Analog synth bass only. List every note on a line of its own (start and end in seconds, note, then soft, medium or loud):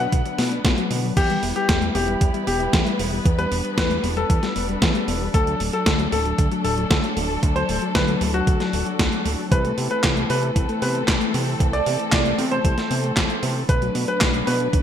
0.12 0.23 B1 medium
0.39 0.60 B2 medium
0.65 0.75 B1 loud
0.91 1.12 B2 medium
1.17 1.38 E2 loud
1.43 1.53 E1 medium
1.69 1.90 E2 loud
1.95 2.16 E1 loud
2.21 2.32 E2 medium
2.47 2.68 E1 medium
2.73 2.84 E2 medium
2.99 3.21 E1 medium
3.25 3.47 E2 loud
3.52 3.62 E1 medium
3.78 3.99 E2 loud
4.04 4.25 E1 loud
4.30 4.40 E2 medium
4.56 4.77 E1 medium
4.82 4.93 E2 medium
5.08 5.29 E1 medium
5.34 5.55 D2 loud
5.60 5.71 D1 medium
5.86 6.08 D2 loud
6.12 6.34 D1 loud
6.38 6.49 D2 medium
6.65 6.86 D1 medium
6.91 7.01 D2 medium
7.17 7.38 D1 medium
7.43 7.64 D2 loud
7.69 7.80 D1 medium
7.95 8.16 D2 loud
8.21 8.42 D1 loud
8.47 8.58 D2 medium
8.73 8.84 D1 medium
8.99 9.10 D2 medium
9.26 9.36 D1 loud
9.52 9.73 C2 loud
9.78 9.88 C3 medium
10.04 10.25 C2 loud
10.30 10.51 C3 loud
10.56 10.67 C2 medium
10.82 11.03 C3 medium
11.08 11.19 C2 medium
11.34 11.55 C3 medium
11.60 11.81 C2 loud
11.86 11.97 C3 medium
12.12 12.34 C2 loud
12.38 12.60 C3 loud
12.65 12.75 C2 medium
12.91 13.12 C3 medium
13.17 13.27 C2 medium
13.43 13.64 C3 medium
13.69 13.90 B1 loud
13.95 14.06 B2 medium
14.21 14.42 B1 loud
14.47 14.68 B2 loud
14.73 14.82 B1 medium